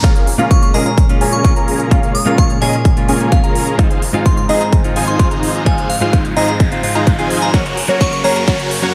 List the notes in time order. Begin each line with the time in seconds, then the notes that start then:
0.03 A#2 G#3 A#3 C#4 F4 G#4 A#4 F5, kick, closed hi-hat, riser
0.16 closed hi-hat
0.27 open hi-hat
0.38 A#2 G#3 A#3 C#4 F4 G#4 A#4 F5, closed hi-hat
0.51 C#6, kick, closed hi-hat
0.62 C#6, closed hi-hat
0.73 A#2 G#3 A#3 C#4 F4 G#4 A#4 D#5 A#5, open hi-hat
0.86 A#5, closed hi-hat
0.98 kick, closed hi-hat
1.09 A#2 G#3 A#3 C#4 F4, closed hi-hat
1.21 C#4 F4 G#4 A#4 G#5, open hi-hat
1.33 C#6, closed hi-hat
1.44 A#2 G#3 A#3 C#4 F4 C#6, kick, closed hi-hat
1.56 C#4 F4 G#4 A#4 A#5, closed hi-hat
1.68 open hi-hat
1.80 closed hi-hat
1.91 A#2 G#3 A#3 C#4 F4 G#4 A#4 F5, kick, closed hi-hat
2.03 closed hi-hat
2.15 D#6, open hi-hat
2.26 A#2 G#3 A#3 C#4 F4 G#4 A#4 F5, closed hi-hat
2.38 C#6, kick, closed hi-hat
2.50 closed hi-hat
2.61 A#2 G#3 A#3 C#4 F4 G#4 A#4 D#5 G#5, open hi-hat
2.73 closed hi-hat
2.85 kick, closed hi-hat
2.96 A#2 G#3 A#3 C#4 F4, closed hi-hat
3.08 C#4 F4 G#4 A#4 G#5, open hi-hat
3.20 closed hi-hat
3.31 A#2 G#3 A#3 C#4 F4 F5, kick, closed hi-hat
3.44 C#4 F4 G#4 A#4 F5 A#5, closed hi-hat
3.55 open hi-hat
3.67 closed hi-hat
3.78 G#2 D#3 G#3 C4 D#4 F4 G#4 C5 F5, kick, closed hi-hat
3.91 closed hi-hat
4.02 open hi-hat
4.13 G#2 G#3 C4 D#4 F4 G#4 C5 F5, closed hi-hat
4.25 C6, kick, closed hi-hat
4.37 C6, closed hi-hat
4.48 G#2 G#3 C4 D#4 F4 G#4 C5 D#5 A#5, open hi-hat
4.61 A#5, closed hi-hat
4.73 kick, closed hi-hat
4.83 G#2 G#3 C4 D#4 F4, closed hi-hat
4.96 D#4 F4 G#4 C5 G#5, open hi-hat
5.08 C6, closed hi-hat
5.18 G#2 G#3 C4 D#4 F4 C6, kick, closed hi-hat
5.31 D#4 F4 G#4 C5 A#5, closed hi-hat
5.43 open hi-hat
5.55 closed hi-hat
5.65 G#2 F3 G#3 C4 D#4 F4 G#4 C5 F5 G#5, kick, closed hi-hat
5.78 closed hi-hat
5.89 F5, open hi-hat
6.01 G#2 G#3 C4 D#4 F4 G#4 C5 F5, closed hi-hat
6.13 kick, closed hi-hat
6.25 closed hi-hat
6.36 G#2 G#3 C4 D#4 F4 G#4 C5 D#5 A#5, open hi-hat
6.48 A#5, closed hi-hat
6.60 kick, closed hi-hat
6.71 G#2 G#3 C4 D#4 F4, closed hi-hat
6.83 G#2 G#3 C4 D#4 F4, open hi-hat
6.95 D#4 F4 G#4 C5 A#5, closed hi-hat
7.07 kick, closed hi-hat
7.18 G#2 G#3 C4 D#4 F4 G#4 C5 G#5, closed hi-hat
7.30 open hi-hat
7.42 A#5, closed hi-hat
7.53 F#2 C#3 F#3 A#3 C#4 F#4 A#4 C#5, kick, snare, closed hi-hat
7.66 closed hi-hat
7.77 open hi-hat
7.88 F#3 A#3 C#4 F#4 A#4 C#5, closed hi-hat
8.01 C#6, kick, snare, closed hi-hat
8.13 C#6, closed hi-hat
8.24 F#3 A#3 C#4 F#4 G#4 A#4 C#5 A#5, open hi-hat
8.36 A#5, closed hi-hat
8.47 F#3 A#3 C#4 F#4 A#4 C#5, kick, snare, closed hi-hat
8.59 closed hi-hat
8.71 open hi-hat
8.82 F#3 A#3 C#4 F#4 A#4 C#5, closed hi-hat